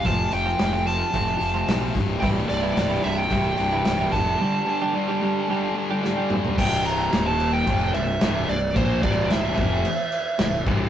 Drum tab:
CC |----------------|----------------|----------------|x-x-x-x-x-x-x-x-|
HH |o-o-o-o-o-o-o-o-|o-o-o-o-o-o-o-o-|----------------|----------------|
SD |----o-------o---|----o-------o---|------------o---|----o-------o---|
T2 |----------------|----------------|--------------o-|----------------|
FT |----------------|----------------|---------------o|----------------|
BD |o-------o-----o-|o-------o-----o-|----------------|o-------o-------|

CC |x-x-x-x-x-x-x-x-|
HH |----------------|
SD |----o-------o---|
T2 |----------------|
FT |----------------|
BD |o-o---o-------o-|